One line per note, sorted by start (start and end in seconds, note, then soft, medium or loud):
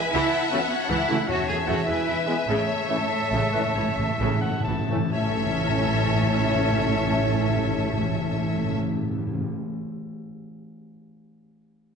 0.00 0.12 B4 loud
0.00 1.29 E5 medium
0.00 0.12 G#5 medium
0.00 0.14 G#5 medium
0.00 0.12 B5 loud
0.13 0.21 C#2 medium
0.13 0.32 E3 loud
0.13 0.51 E4 loud
0.13 0.50 E5 loud
0.13 0.67 F#5 medium
0.13 1.27 F#5 medium
0.13 0.70 A5 medium
0.51 0.58 E3 medium
0.51 0.58 A3 medium
0.51 0.71 B3 loud
0.51 0.58 C#4 medium
0.51 0.59 F#4 medium
0.51 0.60 B4 medium
0.70 0.90 C#4 loud
0.70 0.91 C#5 medium
0.70 1.30 F#5 medium
0.70 1.27 A5 medium
0.89 0.98 C#2 medium
0.89 1.08 E3 medium
0.89 1.28 E4 loud
0.89 1.29 E5 medium
1.09 1.17 C#2 medium
1.09 1.16 E3 medium
1.09 1.16 A3 medium
1.09 1.18 A3 medium
1.09 1.16 C#4 medium
1.09 1.16 F#4 medium
1.28 1.84 E2 loud
1.28 1.37 E2 medium
1.28 1.36 E3 medium
1.28 1.48 F#4 loud
1.28 1.86 C#5 medium
1.28 1.87 C#5 medium
1.28 4.90 E5 medium
1.28 1.47 F#5 medium
1.28 1.86 A5 medium
1.48 1.56 E2 medium
1.48 1.56 A3 medium
1.48 1.57 G#4 loud
1.48 1.66 G#5 medium
1.66 1.76 E2 medium
1.66 1.86 C#3 medium
1.66 1.73 E3 medium
1.66 1.73 A3 medium
1.66 1.74 C#4 medium
1.66 1.74 E4 medium
1.66 1.87 F#4 medium
1.66 1.76 F#5 medium
1.87 1.96 E2 medium
1.87 1.96 G#3 medium
1.87 2.27 E4 medium
1.87 2.50 B4 medium
1.87 2.48 B4 medium
1.87 2.26 E5 medium
1.87 2.48 G#5 medium
2.08 2.16 E2 medium
2.08 2.16 E3 medium
2.25 2.33 E3 medium
2.25 2.34 G#3 medium
2.25 2.35 B3 medium
2.25 2.48 B3 medium
2.25 2.35 E4 medium
2.25 2.37 B4 medium
2.47 2.55 A1 medium
2.47 2.55 A2 soft
2.47 2.67 C#3 medium
2.47 4.86 A3 medium
2.47 4.86 A4 medium
2.47 4.89 C#5 medium
2.47 3.07 C#5 medium
2.47 4.90 A5 medium
2.56 2.63 A2 soft
2.65 2.72 A2 soft
2.73 2.79 A2 soft
2.81 2.88 A2 soft
2.87 2.96 A2 soft
2.87 2.96 E3 medium
2.87 2.95 A3 medium
2.87 2.97 C#4 medium
2.87 2.97 E4 medium
2.97 3.03 A2 medium
3.04 3.11 A2 soft
3.10 3.20 A2 medium
3.10 3.50 E5 medium
3.22 3.29 A2 soft
3.30 3.39 A1 medium
3.30 3.38 A2 medium
3.30 3.52 C#3 medium
3.39 3.46 A2 medium
3.47 3.55 A2 medium
3.52 3.60 A1 medium
3.52 3.63 A2 medium
3.52 3.60 E3 medium
3.52 3.60 A3 medium
3.52 3.62 A3 medium
3.52 3.62 C#4 medium
3.52 3.61 E4 medium
3.52 3.63 B4 medium
3.65 3.71 A2 medium
3.72 3.82 A1 medium
3.72 3.80 A2 medium
3.72 3.84 E3 medium
3.72 3.95 C#5 medium
3.81 3.89 A2 medium
3.90 3.98 A2 medium
3.96 4.05 A1 medium
3.96 4.06 A2 medium
3.96 4.06 A3 medium
3.96 4.40 E5 medium
4.08 4.15 A2 medium
4.17 4.28 A1 medium
4.17 4.25 A2 medium
4.17 4.41 C#3 medium
4.17 4.28 E3 medium
4.17 4.28 A3 medium
4.17 4.28 C#4 medium
4.21 4.29 E4 medium
4.26 4.33 A2 medium
4.34 4.42 A2 medium
4.41 4.51 A1 medium
4.41 4.50 A2 medium
4.41 4.52 A3 medium
4.41 4.64 F#5 medium
4.51 4.59 A2 loud
4.60 4.67 A2 loud
4.65 4.75 A1 medium
4.65 4.77 A2 loud
4.65 4.75 E3 medium
4.65 5.12 A5 medium
4.78 4.87 A2 loud
4.88 4.95 A2 loud
4.88 4.98 E3 medium
4.88 4.98 A3 medium
4.88 4.99 C#4 medium
4.88 4.98 E4 medium
4.96 5.06 A2 loud
5.13 8.78 A1 medium
5.13 5.22 A2 medium
5.13 8.78 E3 medium
5.13 8.78 A3 medium
5.13 8.79 A3 medium
5.13 8.78 C#4 medium
5.13 8.79 C#4 medium
5.13 8.79 E4 medium
5.13 8.79 A4 medium
5.13 8.78 C#5 medium
5.13 8.78 E5 medium
5.13 8.78 A5 medium
5.22 5.30 A2 medium
5.30 5.37 A2 medium
5.38 5.46 A2 medium
5.46 5.53 A2 medium
5.53 5.61 A2 medium
5.61 5.69 A2 medium
5.69 5.77 A2 medium
5.77 5.85 A2 medium
5.85 5.92 A2 medium
5.92 6.00 A2 medium
6.00 6.07 A2 medium
6.08 6.15 A2 medium
6.15 6.23 A2 medium
6.23 6.30 A2 medium
6.30 6.38 A2 medium
6.38 6.46 A2 medium
6.46 6.54 A2 medium
6.54 6.62 A2 loud
6.62 6.70 A2 medium
6.71 6.78 A2 medium
6.79 6.87 A2 medium
6.87 6.95 A2 medium
6.95 7.03 A2 medium
7.03 7.11 A2 medium
7.11 7.19 A2 medium
7.19 7.26 A2 medium
7.26 7.34 A2 medium
7.34 7.42 A2 medium
7.42 7.49 A2 medium
7.49 7.57 A2 medium
7.57 7.64 A2 medium
7.65 7.72 A2 medium
7.72 7.79 A2 medium
7.79 7.86 A2 medium
7.86 7.93 A2 medium
7.93 8.01 A2 loud
8.02 8.10 A2 medium
8.10 8.17 A2 medium
8.17 8.25 A2 medium
8.25 8.32 A2 medium
8.32 8.40 A2 medium
8.40 8.48 A2 medium
8.49 8.56 A2 medium
8.56 8.64 A2 medium
8.64 8.72 A2 medium
8.72 8.79 A2 medium
8.79 8.87 A2 medium
8.87 8.95 A2 medium
8.95 9.03 A2 medium
9.03 9.11 A2 medium
9.11 9.19 A2 medium
9.19 9.26 A2 medium
9.27 9.34 A2 medium
9.34 9.42 A2 medium
9.42 9.49 A2 medium